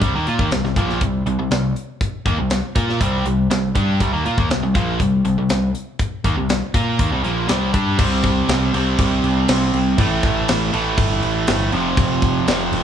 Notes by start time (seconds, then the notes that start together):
0.01 C2 C3 G3, kick, closed hi-hat
0.15 D#2 D#3 A#3
0.27 A#2 A#3 F4, closed hi-hat
0.39 D#2 D#3 A#3, kick
0.51 C2 C3 G3, snare, closed hi-hat
0.64 C2 C3 G3, snare
0.76 A#1 A#2 F3 A#3, kick, closed hi-hat
0.89 snare
1.01 C2 C3 G3, kick, closed hi-hat
1.26 C2 C3 G3, closed hi-hat
1.39 C2 C3 G3
1.51 C2 C3 G3, snare, closed hi-hat
1.76 closed hi-hat
2.01 kick, closed hi-hat
2.26 D#2 D#3 A#3, kick, closed hi-hat
2.38 C2 C3 G3
2.50 snare, closed hi-hat
2.76 A#2 A#3 F4 A#4, kick, closed hi-hat
2.89 snare
3.01 C2 C3 G3 C4, kick, closed hi-hat
3.25 C2 C3 G3, closed hi-hat
3.50 C2 C3 G3, snare, closed hi-hat
3.75 G2 G3 D4 G4, kick, closed hi-hat
4.00 C2 C3 G3, kick, closed hi-hat
4.13 D#2 D#3 A#3
4.25 A#2 A#3 F4, closed hi-hat
4.38 D#2 D#3 A#3, kick
4.50 C2 C3 G3, snare, closed hi-hat
4.63 C2 C3 G3
4.75 A#1 A#2 F3 A#3, kick, closed hi-hat
5.00 C2 C3 G3, kick, closed hi-hat
5.25 C2 C3 G3, closed hi-hat
5.38 C2 C3 G3
5.49 C2 C3 G3, snare, closed hi-hat
5.75 closed hi-hat
5.99 kick, closed hi-hat
6.24 D#2 D#3 A#3, kick, closed hi-hat
6.37 C2 C3 G3
6.49 snare, closed hi-hat
6.74 A#2 A#3 F4 A#4, kick, closed hi-hat
6.99 D#2 D#3 A#3, kick, closed hi-hat
7.12 C2 C3 G3
7.23 A#1 A#2 F3 A#3, closed hi-hat
7.48 C2 C3 G3 C4, snare, closed hi-hat
7.74 G2 G3 D4 G4, kick, closed hi-hat
7.98 C2 C3 G3 C4, kick, crash
8.23 kick, crash
8.49 C2, snare, crash
8.74 C2 C3 G3 C4, crash
8.98 C2, kick, crash
9.23 C2, crash
9.48 C2, snare, crash
9.73 C2, crash
9.98 A1 A2 E3 A3, kick, crash
10.23 A1, kick, crash
10.48 A1, snare, crash
10.73 A1 A2 E3 A3, crash
10.98 G1, kick, crash
11.23 A1, crash
11.47 G1, snare, crash
11.72 F1 F2 C3 F3, crash
11.97 F1, kick, crash
12.22 kick, crash
12.46 F1 F2 C3 F3, snare, crash
12.72 F1, crash